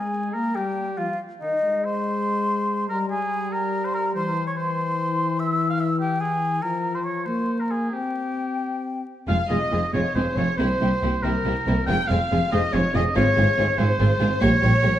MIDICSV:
0, 0, Header, 1, 9, 480
1, 0, Start_track
1, 0, Key_signature, -4, "major"
1, 0, Tempo, 433526
1, 370, Time_signature, 6, 3, 24, 8
1, 2291, Tempo, 415512
1, 4702, Key_signature, -4, "minor"
1, 8051, Tempo, 443459
1, 11411, Tempo, 430416
1, 13811, Tempo, 420168
1, 16873, End_track
2, 0, Start_track
2, 0, Title_t, "Flute"
2, 0, Program_c, 0, 73
2, 0, Note_on_c, 0, 80, 51
2, 358, Note_off_c, 0, 80, 0
2, 364, Note_on_c, 0, 82, 59
2, 605, Note_on_c, 0, 79, 52
2, 621, Note_off_c, 0, 82, 0
2, 1081, Note_on_c, 0, 77, 52
2, 1098, Note_off_c, 0, 79, 0
2, 1315, Note_off_c, 0, 77, 0
2, 1557, Note_on_c, 0, 75, 62
2, 2018, Note_off_c, 0, 75, 0
2, 2049, Note_on_c, 0, 84, 72
2, 3223, Note_off_c, 0, 84, 0
2, 3241, Note_on_c, 0, 82, 71
2, 3476, Note_off_c, 0, 82, 0
2, 3482, Note_on_c, 0, 80, 73
2, 3962, Note_off_c, 0, 80, 0
2, 3971, Note_on_c, 0, 82, 75
2, 4350, Note_on_c, 0, 84, 72
2, 4368, Note_off_c, 0, 82, 0
2, 4451, Note_on_c, 0, 82, 78
2, 4469, Note_off_c, 0, 84, 0
2, 4697, Note_off_c, 0, 82, 0
2, 4703, Note_on_c, 0, 84, 73
2, 5053, Note_off_c, 0, 84, 0
2, 5065, Note_on_c, 0, 85, 77
2, 5117, Note_off_c, 0, 85, 0
2, 5186, Note_on_c, 0, 84, 83
2, 6134, Note_on_c, 0, 88, 76
2, 6151, Note_off_c, 0, 84, 0
2, 6499, Note_on_c, 0, 89, 71
2, 6517, Note_off_c, 0, 88, 0
2, 6602, Note_on_c, 0, 88, 76
2, 6620, Note_off_c, 0, 89, 0
2, 6832, Note_off_c, 0, 88, 0
2, 6839, Note_on_c, 0, 79, 75
2, 7068, Note_on_c, 0, 80, 68
2, 7086, Note_off_c, 0, 79, 0
2, 7553, Note_on_c, 0, 82, 66
2, 7570, Note_off_c, 0, 80, 0
2, 7929, Note_on_c, 0, 84, 51
2, 7947, Note_off_c, 0, 82, 0
2, 8033, Note_on_c, 0, 85, 57
2, 8050, Note_off_c, 0, 84, 0
2, 8274, Note_off_c, 0, 85, 0
2, 8279, Note_on_c, 0, 84, 62
2, 8627, Note_off_c, 0, 84, 0
2, 8643, Note_on_c, 0, 82, 52
2, 8760, Note_on_c, 0, 80, 51
2, 8777, Note_off_c, 0, 82, 0
2, 8998, Note_off_c, 0, 80, 0
2, 9005, Note_on_c, 0, 79, 51
2, 10202, Note_off_c, 0, 79, 0
2, 16873, End_track
3, 0, Start_track
3, 0, Title_t, "Violin section"
3, 0, Program_c, 1, 48
3, 10475, Note_on_c, 1, 77, 64
3, 10692, Note_off_c, 1, 77, 0
3, 10710, Note_on_c, 1, 75, 64
3, 11174, Note_on_c, 1, 73, 58
3, 11180, Note_off_c, 1, 75, 0
3, 11405, Note_off_c, 1, 73, 0
3, 11407, Note_on_c, 1, 72, 57
3, 11642, Note_on_c, 1, 73, 65
3, 11649, Note_off_c, 1, 72, 0
3, 11887, Note_off_c, 1, 73, 0
3, 11891, Note_on_c, 1, 72, 66
3, 12598, Note_off_c, 1, 72, 0
3, 12619, Note_on_c, 1, 70, 65
3, 13320, Note_off_c, 1, 70, 0
3, 13330, Note_on_c, 1, 79, 89
3, 13566, Note_off_c, 1, 79, 0
3, 13571, Note_on_c, 1, 77, 68
3, 14044, Note_off_c, 1, 77, 0
3, 14063, Note_on_c, 1, 75, 71
3, 14299, Note_off_c, 1, 75, 0
3, 14308, Note_on_c, 1, 73, 73
3, 14537, Note_on_c, 1, 75, 75
3, 14542, Note_off_c, 1, 73, 0
3, 14629, Note_off_c, 1, 75, 0
3, 14785, Note_on_c, 1, 73, 78
3, 15492, Note_off_c, 1, 73, 0
3, 15506, Note_on_c, 1, 72, 79
3, 16204, Note_off_c, 1, 72, 0
3, 16222, Note_on_c, 1, 73, 88
3, 16873, Note_off_c, 1, 73, 0
3, 16873, End_track
4, 0, Start_track
4, 0, Title_t, "Oboe"
4, 0, Program_c, 2, 68
4, 0, Note_on_c, 2, 68, 50
4, 368, Note_on_c, 2, 70, 58
4, 384, Note_off_c, 2, 68, 0
4, 614, Note_on_c, 2, 67, 51
4, 630, Note_off_c, 2, 70, 0
4, 1080, Note_on_c, 2, 65, 43
4, 1096, Note_off_c, 2, 67, 0
4, 1314, Note_off_c, 2, 65, 0
4, 1562, Note_on_c, 2, 63, 48
4, 2045, Note_on_c, 2, 72, 65
4, 2062, Note_off_c, 2, 63, 0
4, 3233, Note_off_c, 2, 72, 0
4, 3239, Note_on_c, 2, 70, 66
4, 3351, Note_off_c, 2, 70, 0
4, 3483, Note_on_c, 2, 68, 67
4, 3971, Note_on_c, 2, 70, 57
4, 3988, Note_off_c, 2, 68, 0
4, 4339, Note_on_c, 2, 72, 53
4, 4357, Note_off_c, 2, 70, 0
4, 4451, Note_off_c, 2, 72, 0
4, 4457, Note_on_c, 2, 70, 62
4, 4567, Note_off_c, 2, 70, 0
4, 4701, Note_on_c, 2, 72, 73
4, 5052, Note_off_c, 2, 72, 0
4, 5060, Note_on_c, 2, 73, 61
4, 5170, Note_off_c, 2, 73, 0
4, 5177, Note_on_c, 2, 72, 71
4, 6114, Note_off_c, 2, 72, 0
4, 6129, Note_on_c, 2, 76, 71
4, 6473, Note_off_c, 2, 76, 0
4, 6480, Note_on_c, 2, 77, 65
4, 6594, Note_off_c, 2, 77, 0
4, 6601, Note_on_c, 2, 76, 59
4, 6708, Note_off_c, 2, 76, 0
4, 6828, Note_on_c, 2, 67, 60
4, 7063, Note_off_c, 2, 67, 0
4, 7070, Note_on_c, 2, 68, 63
4, 7547, Note_on_c, 2, 70, 60
4, 7565, Note_off_c, 2, 68, 0
4, 7915, Note_off_c, 2, 70, 0
4, 7922, Note_on_c, 2, 72, 52
4, 7978, Note_off_c, 2, 72, 0
4, 8044, Note_on_c, 2, 73, 54
4, 8268, Note_on_c, 2, 72, 48
4, 8284, Note_off_c, 2, 73, 0
4, 8637, Note_on_c, 2, 70, 41
4, 8653, Note_off_c, 2, 72, 0
4, 8758, Note_on_c, 2, 68, 44
4, 8774, Note_off_c, 2, 70, 0
4, 9000, Note_on_c, 2, 67, 46
4, 9017, Note_off_c, 2, 68, 0
4, 10224, Note_off_c, 2, 67, 0
4, 10462, Note_on_c, 2, 77, 80
4, 10570, Note_off_c, 2, 77, 0
4, 10696, Note_on_c, 2, 75, 73
4, 11156, Note_off_c, 2, 75, 0
4, 11162, Note_on_c, 2, 73, 67
4, 11396, Note_off_c, 2, 73, 0
4, 11402, Note_on_c, 2, 72, 68
4, 11642, Note_off_c, 2, 72, 0
4, 11647, Note_on_c, 2, 73, 75
4, 11866, Note_off_c, 2, 73, 0
4, 11873, Note_on_c, 2, 72, 80
4, 12599, Note_on_c, 2, 70, 76
4, 12616, Note_off_c, 2, 72, 0
4, 13303, Note_off_c, 2, 70, 0
4, 13310, Note_on_c, 2, 79, 95
4, 13548, Note_on_c, 2, 77, 81
4, 13565, Note_off_c, 2, 79, 0
4, 14042, Note_off_c, 2, 77, 0
4, 14049, Note_on_c, 2, 75, 86
4, 14287, Note_on_c, 2, 73, 78
4, 14304, Note_off_c, 2, 75, 0
4, 14538, Note_on_c, 2, 75, 88
4, 14555, Note_off_c, 2, 73, 0
4, 14773, Note_off_c, 2, 75, 0
4, 14779, Note_on_c, 2, 73, 101
4, 15492, Note_on_c, 2, 72, 84
4, 15509, Note_off_c, 2, 73, 0
4, 16205, Note_off_c, 2, 72, 0
4, 16211, Note_on_c, 2, 73, 103
4, 16873, Note_off_c, 2, 73, 0
4, 16873, End_track
5, 0, Start_track
5, 0, Title_t, "Violin section"
5, 0, Program_c, 3, 48
5, 10460, Note_on_c, 3, 65, 50
5, 10461, Note_on_c, 3, 68, 53
5, 10547, Note_off_c, 3, 65, 0
5, 10547, Note_off_c, 3, 68, 0
5, 10691, Note_on_c, 3, 68, 44
5, 10697, Note_on_c, 3, 65, 47
5, 10778, Note_off_c, 3, 68, 0
5, 10783, Note_off_c, 3, 65, 0
5, 10933, Note_on_c, 3, 68, 44
5, 10939, Note_on_c, 3, 65, 47
5, 11019, Note_off_c, 3, 68, 0
5, 11026, Note_off_c, 3, 65, 0
5, 11184, Note_on_c, 3, 65, 48
5, 11185, Note_on_c, 3, 68, 45
5, 11270, Note_off_c, 3, 65, 0
5, 11271, Note_off_c, 3, 68, 0
5, 11419, Note_on_c, 3, 65, 48
5, 11419, Note_on_c, 3, 68, 44
5, 11508, Note_off_c, 3, 65, 0
5, 11508, Note_off_c, 3, 68, 0
5, 11651, Note_on_c, 3, 65, 49
5, 11655, Note_on_c, 3, 68, 48
5, 11740, Note_off_c, 3, 65, 0
5, 11744, Note_off_c, 3, 68, 0
5, 11898, Note_on_c, 3, 67, 53
5, 11899, Note_on_c, 3, 64, 58
5, 11987, Note_off_c, 3, 67, 0
5, 11988, Note_off_c, 3, 64, 0
5, 12139, Note_on_c, 3, 64, 49
5, 12143, Note_on_c, 3, 67, 47
5, 12228, Note_off_c, 3, 64, 0
5, 12232, Note_off_c, 3, 67, 0
5, 12388, Note_on_c, 3, 64, 46
5, 12390, Note_on_c, 3, 67, 44
5, 12477, Note_off_c, 3, 64, 0
5, 12480, Note_off_c, 3, 67, 0
5, 12621, Note_on_c, 3, 67, 47
5, 12628, Note_on_c, 3, 64, 48
5, 12711, Note_off_c, 3, 67, 0
5, 12717, Note_off_c, 3, 64, 0
5, 12860, Note_on_c, 3, 67, 47
5, 12861, Note_on_c, 3, 64, 50
5, 12950, Note_off_c, 3, 64, 0
5, 12950, Note_off_c, 3, 67, 0
5, 13094, Note_on_c, 3, 67, 52
5, 13099, Note_on_c, 3, 64, 54
5, 13183, Note_off_c, 3, 67, 0
5, 13188, Note_off_c, 3, 64, 0
5, 13334, Note_on_c, 3, 65, 63
5, 13334, Note_on_c, 3, 68, 66
5, 13423, Note_off_c, 3, 65, 0
5, 13423, Note_off_c, 3, 68, 0
5, 13574, Note_on_c, 3, 65, 50
5, 13579, Note_on_c, 3, 68, 55
5, 13664, Note_off_c, 3, 65, 0
5, 13668, Note_off_c, 3, 68, 0
5, 13815, Note_on_c, 3, 68, 54
5, 13819, Note_on_c, 3, 65, 51
5, 13906, Note_off_c, 3, 68, 0
5, 13910, Note_off_c, 3, 65, 0
5, 14047, Note_on_c, 3, 65, 60
5, 14049, Note_on_c, 3, 68, 62
5, 14138, Note_off_c, 3, 65, 0
5, 14141, Note_off_c, 3, 68, 0
5, 14290, Note_on_c, 3, 68, 50
5, 14291, Note_on_c, 3, 65, 54
5, 14382, Note_off_c, 3, 65, 0
5, 14382, Note_off_c, 3, 68, 0
5, 14535, Note_on_c, 3, 65, 56
5, 14536, Note_on_c, 3, 68, 59
5, 14626, Note_off_c, 3, 65, 0
5, 14627, Note_off_c, 3, 68, 0
5, 14769, Note_on_c, 3, 68, 64
5, 14770, Note_on_c, 3, 65, 69
5, 14860, Note_off_c, 3, 68, 0
5, 14862, Note_off_c, 3, 65, 0
5, 15015, Note_on_c, 3, 65, 57
5, 15023, Note_on_c, 3, 68, 60
5, 15107, Note_off_c, 3, 65, 0
5, 15114, Note_off_c, 3, 68, 0
5, 15259, Note_on_c, 3, 65, 57
5, 15261, Note_on_c, 3, 68, 57
5, 15351, Note_off_c, 3, 65, 0
5, 15352, Note_off_c, 3, 68, 0
5, 15490, Note_on_c, 3, 65, 63
5, 15498, Note_on_c, 3, 68, 57
5, 15581, Note_off_c, 3, 65, 0
5, 15589, Note_off_c, 3, 68, 0
5, 15739, Note_on_c, 3, 68, 57
5, 15741, Note_on_c, 3, 65, 60
5, 15830, Note_off_c, 3, 68, 0
5, 15833, Note_off_c, 3, 65, 0
5, 15968, Note_on_c, 3, 68, 57
5, 15972, Note_on_c, 3, 65, 60
5, 16059, Note_off_c, 3, 68, 0
5, 16063, Note_off_c, 3, 65, 0
5, 16211, Note_on_c, 3, 67, 72
5, 16212, Note_on_c, 3, 73, 70
5, 16303, Note_off_c, 3, 67, 0
5, 16303, Note_off_c, 3, 73, 0
5, 16446, Note_on_c, 3, 67, 59
5, 16450, Note_on_c, 3, 73, 62
5, 16537, Note_off_c, 3, 67, 0
5, 16541, Note_off_c, 3, 73, 0
5, 16680, Note_on_c, 3, 67, 58
5, 16686, Note_on_c, 3, 73, 53
5, 16772, Note_off_c, 3, 67, 0
5, 16777, Note_off_c, 3, 73, 0
5, 16873, End_track
6, 0, Start_track
6, 0, Title_t, "Viola section"
6, 0, Program_c, 4, 48
6, 10463, Note_on_c, 4, 56, 49
6, 10463, Note_on_c, 4, 60, 46
6, 10549, Note_off_c, 4, 56, 0
6, 10549, Note_off_c, 4, 60, 0
6, 10698, Note_on_c, 4, 60, 43
6, 10701, Note_on_c, 4, 56, 40
6, 10785, Note_off_c, 4, 60, 0
6, 10787, Note_off_c, 4, 56, 0
6, 10942, Note_on_c, 4, 60, 45
6, 10946, Note_on_c, 4, 56, 46
6, 11029, Note_off_c, 4, 60, 0
6, 11032, Note_off_c, 4, 56, 0
6, 11172, Note_on_c, 4, 56, 46
6, 11173, Note_on_c, 4, 60, 46
6, 11259, Note_off_c, 4, 56, 0
6, 11260, Note_off_c, 4, 60, 0
6, 11412, Note_on_c, 4, 60, 47
6, 11414, Note_on_c, 4, 56, 46
6, 11501, Note_off_c, 4, 60, 0
6, 11503, Note_off_c, 4, 56, 0
6, 11640, Note_on_c, 4, 60, 47
6, 11643, Note_on_c, 4, 56, 42
6, 11730, Note_off_c, 4, 60, 0
6, 11733, Note_off_c, 4, 56, 0
6, 11879, Note_on_c, 4, 60, 51
6, 11881, Note_on_c, 4, 58, 45
6, 11968, Note_off_c, 4, 60, 0
6, 11970, Note_off_c, 4, 58, 0
6, 12128, Note_on_c, 4, 58, 44
6, 12131, Note_on_c, 4, 60, 46
6, 12217, Note_off_c, 4, 58, 0
6, 12220, Note_off_c, 4, 60, 0
6, 12375, Note_on_c, 4, 60, 50
6, 12376, Note_on_c, 4, 58, 49
6, 12465, Note_off_c, 4, 58, 0
6, 12465, Note_off_c, 4, 60, 0
6, 12607, Note_on_c, 4, 58, 50
6, 12611, Note_on_c, 4, 60, 47
6, 12696, Note_off_c, 4, 58, 0
6, 12700, Note_off_c, 4, 60, 0
6, 12854, Note_on_c, 4, 60, 49
6, 12855, Note_on_c, 4, 58, 49
6, 12943, Note_off_c, 4, 60, 0
6, 12944, Note_off_c, 4, 58, 0
6, 13093, Note_on_c, 4, 60, 54
6, 13096, Note_on_c, 4, 58, 50
6, 13182, Note_off_c, 4, 60, 0
6, 13185, Note_off_c, 4, 58, 0
6, 13330, Note_on_c, 4, 60, 58
6, 13331, Note_on_c, 4, 56, 55
6, 13419, Note_off_c, 4, 60, 0
6, 13420, Note_off_c, 4, 56, 0
6, 13571, Note_on_c, 4, 60, 54
6, 13572, Note_on_c, 4, 56, 52
6, 13661, Note_off_c, 4, 56, 0
6, 13661, Note_off_c, 4, 60, 0
6, 13812, Note_on_c, 4, 60, 57
6, 13813, Note_on_c, 4, 56, 47
6, 13903, Note_off_c, 4, 60, 0
6, 13904, Note_off_c, 4, 56, 0
6, 14055, Note_on_c, 4, 56, 51
6, 14055, Note_on_c, 4, 60, 58
6, 14147, Note_off_c, 4, 56, 0
6, 14147, Note_off_c, 4, 60, 0
6, 14288, Note_on_c, 4, 56, 53
6, 14289, Note_on_c, 4, 60, 55
6, 14379, Note_off_c, 4, 56, 0
6, 14380, Note_off_c, 4, 60, 0
6, 14531, Note_on_c, 4, 56, 61
6, 14532, Note_on_c, 4, 60, 52
6, 14622, Note_off_c, 4, 56, 0
6, 14624, Note_off_c, 4, 60, 0
6, 14779, Note_on_c, 4, 56, 63
6, 14781, Note_on_c, 4, 60, 64
6, 14871, Note_off_c, 4, 56, 0
6, 14872, Note_off_c, 4, 60, 0
6, 15020, Note_on_c, 4, 60, 59
6, 15022, Note_on_c, 4, 56, 56
6, 15112, Note_off_c, 4, 60, 0
6, 15113, Note_off_c, 4, 56, 0
6, 15265, Note_on_c, 4, 56, 56
6, 15265, Note_on_c, 4, 60, 56
6, 15357, Note_off_c, 4, 56, 0
6, 15357, Note_off_c, 4, 60, 0
6, 15497, Note_on_c, 4, 60, 53
6, 15498, Note_on_c, 4, 56, 56
6, 15588, Note_off_c, 4, 60, 0
6, 15590, Note_off_c, 4, 56, 0
6, 15739, Note_on_c, 4, 60, 63
6, 15741, Note_on_c, 4, 56, 62
6, 15831, Note_off_c, 4, 60, 0
6, 15833, Note_off_c, 4, 56, 0
6, 15974, Note_on_c, 4, 60, 63
6, 15975, Note_on_c, 4, 56, 59
6, 16066, Note_off_c, 4, 60, 0
6, 16067, Note_off_c, 4, 56, 0
6, 16213, Note_on_c, 4, 55, 61
6, 16213, Note_on_c, 4, 58, 64
6, 16304, Note_off_c, 4, 55, 0
6, 16304, Note_off_c, 4, 58, 0
6, 16454, Note_on_c, 4, 58, 52
6, 16456, Note_on_c, 4, 55, 53
6, 16545, Note_off_c, 4, 58, 0
6, 16548, Note_off_c, 4, 55, 0
6, 16685, Note_on_c, 4, 55, 58
6, 16689, Note_on_c, 4, 58, 62
6, 16777, Note_off_c, 4, 55, 0
6, 16781, Note_off_c, 4, 58, 0
6, 16873, End_track
7, 0, Start_track
7, 0, Title_t, "French horn section"
7, 0, Program_c, 5, 60
7, 0, Note_on_c, 5, 56, 50
7, 368, Note_off_c, 5, 56, 0
7, 378, Note_on_c, 5, 58, 59
7, 613, Note_off_c, 5, 58, 0
7, 619, Note_on_c, 5, 55, 51
7, 1084, Note_off_c, 5, 55, 0
7, 1084, Note_on_c, 5, 53, 52
7, 1188, Note_off_c, 5, 53, 0
7, 1572, Note_on_c, 5, 51, 47
7, 1681, Note_off_c, 5, 51, 0
7, 1810, Note_on_c, 5, 56, 52
7, 3205, Note_off_c, 5, 56, 0
7, 3247, Note_on_c, 5, 55, 64
7, 4698, Note_on_c, 5, 52, 73
7, 4700, Note_off_c, 5, 55, 0
7, 7512, Note_off_c, 5, 52, 0
7, 7560, Note_on_c, 5, 53, 59
7, 8268, Note_off_c, 5, 53, 0
7, 8281, Note_on_c, 5, 58, 46
7, 8991, Note_on_c, 5, 60, 43
7, 9000, Note_off_c, 5, 58, 0
7, 10195, Note_off_c, 5, 60, 0
7, 16873, End_track
8, 0, Start_track
8, 0, Title_t, "Cello section"
8, 0, Program_c, 6, 48
8, 10464, Note_on_c, 6, 41, 50
8, 10550, Note_off_c, 6, 41, 0
8, 10708, Note_on_c, 6, 41, 50
8, 10795, Note_off_c, 6, 41, 0
8, 10939, Note_on_c, 6, 41, 52
8, 11026, Note_off_c, 6, 41, 0
8, 11177, Note_on_c, 6, 41, 53
8, 11264, Note_off_c, 6, 41, 0
8, 11409, Note_on_c, 6, 41, 51
8, 11498, Note_off_c, 6, 41, 0
8, 11650, Note_on_c, 6, 41, 58
8, 11740, Note_off_c, 6, 41, 0
8, 11892, Note_on_c, 6, 36, 60
8, 11981, Note_off_c, 6, 36, 0
8, 12133, Note_on_c, 6, 36, 51
8, 12222, Note_off_c, 6, 36, 0
8, 12374, Note_on_c, 6, 36, 57
8, 12463, Note_off_c, 6, 36, 0
8, 12619, Note_on_c, 6, 36, 64
8, 12709, Note_off_c, 6, 36, 0
8, 12858, Note_on_c, 6, 36, 50
8, 12947, Note_off_c, 6, 36, 0
8, 13094, Note_on_c, 6, 36, 61
8, 13183, Note_off_c, 6, 36, 0
8, 13340, Note_on_c, 6, 41, 62
8, 13429, Note_off_c, 6, 41, 0
8, 13579, Note_on_c, 6, 41, 65
8, 13668, Note_off_c, 6, 41, 0
8, 13819, Note_on_c, 6, 41, 64
8, 13911, Note_off_c, 6, 41, 0
8, 14062, Note_on_c, 6, 41, 62
8, 14153, Note_off_c, 6, 41, 0
8, 14296, Note_on_c, 6, 41, 64
8, 14387, Note_off_c, 6, 41, 0
8, 14534, Note_on_c, 6, 41, 71
8, 14626, Note_off_c, 6, 41, 0
8, 14776, Note_on_c, 6, 44, 69
8, 14867, Note_off_c, 6, 44, 0
8, 15027, Note_on_c, 6, 44, 67
8, 15118, Note_off_c, 6, 44, 0
8, 15265, Note_on_c, 6, 44, 66
8, 15357, Note_off_c, 6, 44, 0
8, 15507, Note_on_c, 6, 44, 69
8, 15598, Note_off_c, 6, 44, 0
8, 15736, Note_on_c, 6, 44, 60
8, 15828, Note_off_c, 6, 44, 0
8, 15979, Note_on_c, 6, 44, 67
8, 16071, Note_off_c, 6, 44, 0
8, 16214, Note_on_c, 6, 46, 74
8, 16305, Note_off_c, 6, 46, 0
8, 16457, Note_on_c, 6, 46, 66
8, 16548, Note_off_c, 6, 46, 0
8, 16690, Note_on_c, 6, 46, 66
8, 16781, Note_off_c, 6, 46, 0
8, 16873, End_track
9, 0, Start_track
9, 0, Title_t, "Double bass section"
9, 0, Program_c, 7, 48
9, 10463, Note_on_c, 7, 29, 56
9, 10550, Note_off_c, 7, 29, 0
9, 10699, Note_on_c, 7, 29, 55
9, 10785, Note_off_c, 7, 29, 0
9, 10940, Note_on_c, 7, 29, 48
9, 11027, Note_off_c, 7, 29, 0
9, 11176, Note_on_c, 7, 29, 53
9, 11262, Note_off_c, 7, 29, 0
9, 11409, Note_on_c, 7, 29, 49
9, 11498, Note_off_c, 7, 29, 0
9, 11644, Note_on_c, 7, 29, 57
9, 11733, Note_off_c, 7, 29, 0
9, 11888, Note_on_c, 7, 36, 61
9, 11978, Note_off_c, 7, 36, 0
9, 12131, Note_on_c, 7, 36, 52
9, 12221, Note_off_c, 7, 36, 0
9, 12371, Note_on_c, 7, 36, 53
9, 12460, Note_off_c, 7, 36, 0
9, 12606, Note_on_c, 7, 36, 56
9, 12695, Note_off_c, 7, 36, 0
9, 12846, Note_on_c, 7, 36, 56
9, 12936, Note_off_c, 7, 36, 0
9, 13090, Note_on_c, 7, 36, 65
9, 13179, Note_off_c, 7, 36, 0
9, 13327, Note_on_c, 7, 29, 65
9, 13416, Note_off_c, 7, 29, 0
9, 13568, Note_on_c, 7, 29, 59
9, 13657, Note_off_c, 7, 29, 0
9, 13809, Note_on_c, 7, 29, 55
9, 13900, Note_off_c, 7, 29, 0
9, 14049, Note_on_c, 7, 29, 53
9, 14141, Note_off_c, 7, 29, 0
9, 14286, Note_on_c, 7, 29, 64
9, 14377, Note_off_c, 7, 29, 0
9, 14531, Note_on_c, 7, 29, 67
9, 14622, Note_off_c, 7, 29, 0
9, 14775, Note_on_c, 7, 32, 74
9, 14866, Note_off_c, 7, 32, 0
9, 15021, Note_on_c, 7, 32, 66
9, 15112, Note_off_c, 7, 32, 0
9, 15261, Note_on_c, 7, 32, 65
9, 15353, Note_off_c, 7, 32, 0
9, 15505, Note_on_c, 7, 32, 66
9, 15596, Note_off_c, 7, 32, 0
9, 15741, Note_on_c, 7, 32, 68
9, 15832, Note_off_c, 7, 32, 0
9, 15971, Note_on_c, 7, 32, 71
9, 16063, Note_off_c, 7, 32, 0
9, 16217, Note_on_c, 7, 34, 82
9, 16309, Note_off_c, 7, 34, 0
9, 16452, Note_on_c, 7, 34, 72
9, 16543, Note_off_c, 7, 34, 0
9, 16692, Note_on_c, 7, 34, 65
9, 16783, Note_off_c, 7, 34, 0
9, 16873, End_track
0, 0, End_of_file